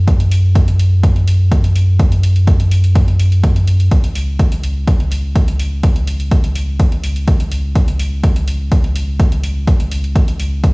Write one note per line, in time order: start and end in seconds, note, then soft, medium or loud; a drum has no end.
0.00 3.89 F#2 medium
0.08 kick loud
0.08 closed hi-hat medium
0.20 closed hi-hat soft
0.32 open hi-hat medium
0.56 kick loud
0.56 closed hi-hat medium
0.68 closed hi-hat soft
0.80 open hi-hat medium
1.03 kick loud
1.03 closed hi-hat medium
1.16 open hi-hat soft
1.28 open hi-hat medium
1.52 kick loud
1.52 closed hi-hat medium
1.64 closed hi-hat soft
1.76 open hi-hat medium
1.99 kick loud
1.99 closed hi-hat medium
2.12 closed hi-hat soft
2.23 open hi-hat medium
2.36 closed hi-hat soft
2.47 kick loud
2.47 closed hi-hat medium
2.60 closed hi-hat soft
2.71 open hi-hat medium
2.84 closed hi-hat soft
2.95 kick loud
2.95 closed hi-hat medium
3.08 open hi-hat soft
3.19 open hi-hat medium
3.32 closed hi-hat soft
3.43 kick loud
3.43 closed hi-hat medium
3.56 closed hi-hat soft
3.67 open hi-hat medium
3.80 closed hi-hat soft
3.91 10.74 C#2 medium
3.91 kick loud
3.91 closed hi-hat medium
4.04 closed hi-hat soft
4.15 open hi-hat medium
4.39 kick loud
4.39 closed hi-hat medium
4.52 closed hi-hat soft
4.64 open hi-hat medium
4.87 kick loud
4.87 closed hi-hat medium
5.00 open hi-hat soft
5.12 open hi-hat medium
5.36 kick loud
5.36 closed hi-hat medium
5.48 closed hi-hat soft
5.59 open hi-hat medium
5.83 kick loud
5.83 closed hi-hat medium
5.96 closed hi-hat soft
6.07 open hi-hat medium
6.20 closed hi-hat soft
6.32 kick loud
6.32 closed hi-hat medium
6.44 closed hi-hat soft
6.55 open hi-hat medium
6.79 kick loud
6.79 closed hi-hat medium
6.92 open hi-hat soft
7.03 open hi-hat medium
7.16 closed hi-hat soft
7.28 kick loud
7.28 closed hi-hat medium
7.40 closed hi-hat soft
7.52 open hi-hat medium
7.76 kick loud
7.76 closed hi-hat medium
7.88 closed hi-hat soft
8.00 open hi-hat medium
8.24 kick loud
8.24 closed hi-hat medium
8.36 closed hi-hat soft
8.48 open hi-hat medium
8.72 kick loud
8.72 closed hi-hat medium
8.84 open hi-hat soft
8.96 open hi-hat medium
9.20 kick loud
9.20 closed hi-hat medium
9.32 closed hi-hat soft
9.44 open hi-hat medium
9.68 kick loud
9.68 closed hi-hat medium
9.80 closed hi-hat soft
9.92 open hi-hat medium
10.04 closed hi-hat soft
10.16 kick loud
10.16 closed hi-hat medium
10.28 closed hi-hat soft
10.40 open hi-hat medium
10.64 kick loud
10.64 closed hi-hat medium